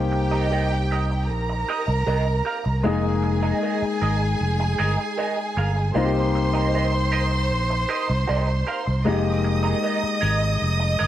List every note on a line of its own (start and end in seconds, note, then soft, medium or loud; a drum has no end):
0.00 1.30 C2 medium
0.00 2.80 A#3 medium
0.00 2.81 C4 medium
0.00 2.81 D#4 medium
0.00 1.26 G4 medium
0.00 2.82 G4 medium
0.00 1.27 G5 medium
0.12 muted clean electric guitar stroke soft
0.31 0.46 G4 soft
0.31 0.45 A#4 soft
0.31 0.45 D#5 medium
0.51 0.68 G4 medium
0.51 0.69 A#4 medium
0.51 0.69 D#5 medium
0.71 muted clean electric guitar stroke soft
0.91 1.04 G4 soft
0.91 1.04 A#4 soft
0.91 1.04 D#5 medium
1.10 muted clean electric guitar stroke soft
1.29 1.63 A#1 medium
1.29 2.82 A#4 medium
1.29 2.82 A#5 medium
1.49 muted clean electric guitar stroke soft
1.69 1.85 G4 medium
1.69 1.86 A#4 medium
1.69 1.86 D#5 medium
1.88 2.05 C2 medium
1.88 muted clean electric guitar stroke soft
2.06 2.40 C2 medium
2.06 2.24 G4 medium
2.06 2.24 A#4 medium
2.06 2.24 D#5 medium
2.26 muted clean electric guitar stroke soft
2.45 2.59 G4 soft
2.45 2.59 A#4 soft
2.45 2.59 F5 soft
2.64 2.82 C2 medium
2.64 muted clean electric guitar stroke soft
2.83 3.51 F1 loud
2.83 5.91 G#3 medium
2.83 5.92 A#3 medium
2.83 5.92 D#4 medium
2.83 3.01 G#4 medium
2.83 5.92 G#4 medium
2.83 5.93 G#4 medium
2.83 3.01 A#4 medium
2.83 3.02 D#5 medium
2.83 5.92 G#5 medium
3.23 muted clean electric guitar stroke soft
3.43 3.57 G#4 soft
3.43 3.56 A#4 soft
3.43 3.56 D#5 medium
3.62 3.79 G#4 medium
3.62 3.79 A#4 medium
3.62 3.80 D#5 medium
3.82 muted fingered electric bass stroke soft
3.82 muted clean electric guitar stroke soft
4.02 4.35 G#1 medium
4.02 4.15 G#4 medium
4.02 4.15 A#4 medium
4.02 4.15 D#5 medium
4.21 muted clean electric guitar stroke soft
4.41 4.74 F1 medium
4.60 muted clean electric guitar stroke soft
4.78 4.96 G1 medium
4.78 4.96 G#4 medium
4.78 4.96 A#4 medium
4.78 4.96 D#5 medium
4.98 muted clean electric guitar stroke soft
5.18 5.34 G#4 medium
5.18 5.35 A#4 medium
5.18 5.35 D#5 medium
5.38 muted clean electric guitar stroke soft
5.57 5.90 G1 medium
5.57 5.70 G#4 medium
5.57 5.70 A#4 soft
5.57 5.71 F5 medium
5.76 muted clean electric guitar stroke soft
5.94 7.51 C2 medium
5.94 9.02 A#3 medium
5.94 9.02 C4 medium
5.94 9.03 D#4 medium
5.94 6.12 G4 medium
5.94 6.12 A#4 medium
5.94 9.03 C5 medium
5.94 6.12 D#5 medium
5.94 9.03 C6 medium
5.98 6.04 F4 medium
6.05 9.07 G4 medium
6.35 muted clean electric guitar stroke soft
6.54 6.67 G4 soft
6.54 6.67 A#4 soft
6.54 6.67 D#5 medium
6.74 6.90 G4 medium
6.74 6.91 A#4 medium
6.74 6.91 D#5 medium
6.93 muted clean electric guitar stroke soft
7.12 7.25 G4 soft
7.12 7.25 A#4 medium
7.12 7.26 D#5 medium
7.32 muted clean electric guitar stroke soft
7.51 7.84 A#1 medium
7.70 muted clean electric guitar stroke soft
7.89 8.06 G4 medium
7.89 8.06 A#4 medium
7.89 8.07 D#5 medium
8.09 8.26 C2 medium
8.09 muted clean electric guitar stroke soft
8.27 8.62 C2 medium
8.27 8.48 G4 medium
8.27 8.47 A#4 medium
8.27 8.47 D#5 medium
8.48 muted clean electric guitar stroke soft
8.67 8.80 G4 medium
8.67 8.80 A#4 medium
8.67 8.81 F5 medium
8.86 9.04 C2 medium
8.86 muted clean electric guitar stroke soft
9.05 9.73 F1 medium
9.05 11.07 G#3 medium
9.05 11.07 A#3 medium
9.05 11.07 D#4 medium
9.05 11.07 G4 medium
9.05 9.22 G#4 medium
9.05 9.23 A#4 medium
9.05 9.23 D#5 medium
9.05 11.07 D#5 medium
9.05 11.07 D#6 medium
9.44 muted clean electric guitar stroke soft
9.63 9.77 G#4 soft
9.63 9.77 A#4 soft
9.63 9.77 D#5 soft
9.83 10.00 G#4 medium
9.83 10.00 A#4 medium
9.83 10.01 D#5 medium
10.03 muted clean electric guitar stroke soft
10.03 muted fingered electric bass stroke soft
10.21 10.56 G#1 medium
10.21 10.35 G#4 medium
10.21 10.35 A#4 medium
10.21 10.35 D#5 medium
10.41 muted clean electric guitar stroke soft
10.62 10.95 F1 medium
10.80 muted clean electric guitar stroke soft
10.99 11.07 G1 medium
10.99 11.07 G#4 medium
10.99 11.07 A#4 medium
10.99 11.07 D#5 medium